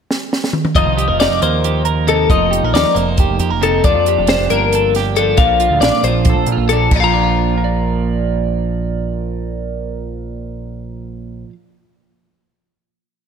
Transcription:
0.11 snare medium
0.33 snare medium
0.44 snare medium
0.53 mid tom medium
0.65 mid tom medium
0.75 0.85 F1 medium
0.75 2.30 F3 medium
0.75 1.21 D#4 medium
0.75 1.19 D#5 medium
0.75 kick medium
0.75 closed hi-hat medium
0.86 1.10 C2 medium
0.97 1.08 G4 medium
0.97 closed hi-hat medium
1.08 1.28 F1 medium
1.08 1.63 A#4 medium
1.20 2.07 D#4 medium
1.20 1.42 D5 medium
1.20 snare loud
1.20 closed hi-hat medium
1.29 1.40 F1 medium
1.42 2.26 D#2 medium
1.42 2.94 A#3 medium
1.42 1.86 C5 medium
1.42 closed hi-hat medium
1.64 1.85 G4 medium
1.64 closed hi-hat medium
1.85 2.50 A#4 medium
1.85 closed hi-hat medium
2.07 2.30 C3 medium
2.07 2.27 D#4 soft
2.07 2.30 A4 medium
2.07 closed hi-hat medium
2.30 2.60 F1 medium
2.30 3.85 F3 medium
2.30 2.73 D#4 medium
2.30 2.73 D#5 medium
2.30 kick medium
2.30 closed hi-hat medium
2.51 2.64 G4 medium
2.51 closed hi-hat medium
2.63 2.73 A#1 medium
2.63 3.19 A#4 medium
2.74 2.84 D#2 medium
2.74 3.62 D#4 medium
2.74 2.97 D5 medium
2.74 snare loud
2.74 closed hi-hat medium
2.95 3.26 F1 medium
2.95 4.51 A#3 medium
2.95 3.41 C5 medium
2.95 closed hi-hat soft
3.18 3.39 G4 medium
3.18 kick medium
3.18 closed hi-hat medium
3.29 3.39 F1 medium
3.39 3.50 F2 medium
3.39 3.50 G4 medium
3.39 closed hi-hat medium
3.50 3.81 F1 medium
3.50 3.84 A#4 soft
3.61 3.84 C3 medium
3.61 3.82 D#4 medium
3.61 3.85 A4 medium
3.61 closed hi-hat medium
3.84 3.94 F1 medium
3.84 5.18 F3 medium
3.84 4.30 D4 medium
3.84 4.28 D5 medium
3.84 kick medium
3.84 closed hi-hat medium
3.95 4.20 F2 medium
4.06 4.73 G4 medium
4.06 closed hi-hat medium
4.18 4.38 F1 medium
4.27 5.18 D4 medium
4.27 4.50 C5 medium
4.27 snare loud
4.27 closed hi-hat medium
4.39 4.49 F1 medium
4.50 5.34 G1 medium
4.50 5.37 A#3 medium
4.50 4.94 A#4 medium
4.50 closed hi-hat medium
4.73 4.96 A4 medium
4.73 closed hi-hat medium
4.95 5.39 G4 medium
4.95 snare soft
4.95 closed hi-hat medium
5.16 6.05 F3 medium
5.16 5.37 D4 soft
5.16 5.38 A4 medium
5.16 closed hi-hat medium
5.37 5.67 A#1 medium
5.37 6.69 A#2 medium
5.37 5.82 D4 medium
5.37 5.81 F5 medium
5.37 kick medium
5.37 closed hi-hat medium
5.60 6.48 F4 medium
5.60 closed hi-hat medium
5.70 5.79 D2 medium
5.80 5.91 A1 medium
5.80 6.03 D5 medium
5.80 snare loud
5.80 closed hi-hat medium
5.84 6.71 D4 medium
6.03 6.33 A#1 medium
6.03 7.02 F3 medium
6.03 6.48 C5 medium
6.03 closed hi-hat medium
6.25 kick medium
6.25 closed hi-hat medium
6.30 6.91 A4 soft
6.35 6.46 A#1 medium
6.46 6.57 A#2 medium
6.46 closed hi-hat medium
6.52 6.91 F4 medium
6.57 6.87 A#1 medium
6.69 6.90 A#2 medium
6.69 6.90 D4 medium
6.69 6.91 A4 medium
6.69 closed hi-hat medium
6.91 11.44 A#1 medium
6.91 11.49 A#2 medium
6.91 kick medium
6.91 crash medium
6.96 7.00 D5 medium
7.00 11.54 F3 medium
7.00 11.52 F5 medium
7.00 11.50 A#5 medium
7.13 7.57 D4 medium
7.23 7.64 F4 medium
7.58 11.48 A#4 medium
7.64 11.52 D5 medium

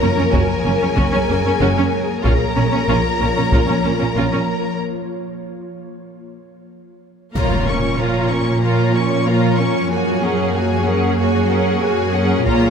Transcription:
0.00 0.08 F#1 soft
0.00 0.08 F#2 soft
0.00 2.25 F#3 medium
0.00 2.23 A#3 medium
0.00 0.08 A#3 soft
0.00 0.08 C#4 soft
0.00 2.25 G#4 medium
0.00 2.21 A#4 medium
0.00 2.23 C#5 medium
0.00 0.30 A#5 medium
0.17 0.24 F#2 soft
0.17 0.24 C#4 soft
0.32 0.41 F#1 medium
0.32 0.39 F#2 medium
0.32 0.40 C#4 medium
0.32 0.40 F#4 medium
0.32 2.24 G#5 medium
0.32 taiko medium
0.65 0.72 F#1 soft
0.65 0.72 F#2 soft
0.65 0.71 A#3 soft
0.65 0.71 C#4 soft
0.82 0.88 F#2 soft
0.82 0.88 C#4 soft
0.97 1.04 F#1 medium
0.97 1.03 F#2 medium
0.97 1.03 C#4 soft
0.97 1.03 F#4 medium
0.97 taiko medium
1.13 1.20 F#2 soft
1.13 1.20 C#4 soft
1.29 1.36 F#1 soft
1.29 1.36 F#2 soft
1.29 1.36 A#3 soft
1.29 1.36 C#4 soft
1.45 1.51 F#2 soft
1.45 1.52 C#4 soft
1.61 1.67 F#1 medium
1.61 1.67 F#2 medium
1.61 1.68 C#4 medium
1.61 1.68 F#4 medium
1.77 1.83 F#2 soft
1.77 1.85 C#4 soft
2.24 2.32 A#1 medium
2.24 2.31 A#2 medium
2.24 4.80 F3 medium
2.24 4.76 A#3 medium
2.24 2.32 C#4 medium
2.24 4.80 F4 medium
2.24 2.31 F4 medium
2.24 4.76 A#4 medium
2.24 4.76 C#5 medium
2.24 4.76 A#5 medium
2.24 taiko medium
2.56 2.64 A#1 soft
2.56 2.63 A#2 soft
2.56 2.63 A#3 soft
2.56 2.63 C#4 soft
2.73 2.80 A#2 soft
2.73 2.80 C#4 soft
2.88 2.96 A#1 medium
2.88 2.95 A#2 soft
2.88 2.95 C#4 soft
2.88 2.95 F4 soft
2.88 taiko medium
3.21 3.28 A#1 soft
3.21 3.27 A#2 soft
3.21 3.27 A#3 soft
3.21 3.27 C#4 soft
3.36 3.43 A#2 soft
3.36 3.43 C#4 soft
3.52 3.59 A#1 soft
3.52 3.59 A#2 soft
3.52 3.59 C#4 soft
3.52 3.59 F4 soft
3.52 taiko medium
3.68 3.75 A#2 soft
3.68 3.75 C#4 soft
3.84 3.91 A#1 soft
3.84 3.91 A#2 soft
3.84 3.90 A#3 soft
3.84 3.90 C#4 soft
4.00 4.07 A#2 soft
4.00 4.06 C#4 soft
4.17 4.23 A#1 soft
4.17 4.23 A#2 soft
4.17 4.23 C#4 soft
4.17 4.23 F4 soft
4.33 4.40 A#2 soft
4.33 4.39 C#4 soft
7.35 9.87 A#2 soft
7.35 9.86 F3 soft
7.35 7.65 A#3 soft
7.35 12.42 A#3 soft
7.35 7.65 F4 soft
7.35 9.87 F4 soft
7.35 12.42 C#5 soft
7.35 7.65 C#5 soft
7.35 7.65 A#5 soft
7.35 taiko soft
7.35 impact soft
7.67 7.99 C#4 soft
7.67 7.99 A#4 soft
7.67 7.99 C#6 soft
7.99 8.31 A#3 soft
7.99 8.31 F4 soft
7.99 8.31 C#5 soft
7.99 8.31 A#5 soft
8.30 8.63 C#4 soft
8.30 8.63 A#4 soft
8.30 8.63 C#6 soft
8.61 8.92 A#3 soft
8.61 8.93 F4 soft
8.61 8.92 C#5 soft
8.61 8.92 A#5 soft
8.94 9.27 C#4 soft
8.94 9.27 A#4 soft
8.94 9.27 C#6 soft
9.26 9.58 A#3 soft
9.26 9.59 F4 soft
9.26 9.59 C#5 soft
9.26 9.59 A#5 soft
9.58 9.91 C#4 soft
9.58 9.91 A#4 soft
9.58 9.91 C#6 soft
9.90 12.42 F#2 soft
9.90 12.46 F#3 medium
9.90 10.20 A#3 soft
9.90 10.20 F#4 soft
9.90 12.46 G#4 soft
9.90 10.21 G#4 soft
9.90 10.21 G#5 soft
10.22 10.55 C#4 soft
10.22 10.55 G#4 soft
10.22 10.55 A#4 soft
10.22 10.55 F#5 soft
10.55 10.87 A#3 soft
10.55 10.87 F#4 soft
10.55 10.87 G#4 soft
10.55 10.87 G#5 soft
10.87 11.19 C#4 soft
10.87 11.19 G#4 soft
10.87 11.19 A#4 soft
10.87 11.19 F#5 soft
11.19 11.48 A#3 soft
11.19 11.48 F#4 soft
11.19 11.49 G#4 soft
11.19 11.48 G#5 soft
11.51 11.83 C#4 soft
11.51 11.83 G#4 soft
11.51 11.83 A#4 soft
11.51 11.83 F#5 soft
11.82 12.14 A#3 soft
11.82 12.14 F#4 soft
11.82 12.15 G#4 soft
11.82 12.15 G#5 soft
12.15 12.47 C#4 soft
12.15 12.46 G#4 soft
12.15 12.47 A#4 soft
12.15 12.47 F#5 soft
12.45 12.70 A#2 medium
12.45 12.70 F3 medium
12.45 12.70 A#3 soft
12.45 12.70 A#3 medium
12.45 12.70 F4 medium
12.45 12.70 F4 soft
12.45 12.70 C#5 soft
12.45 12.70 C#5 medium
12.45 12.70 A#5 soft
12.45 taiko medium

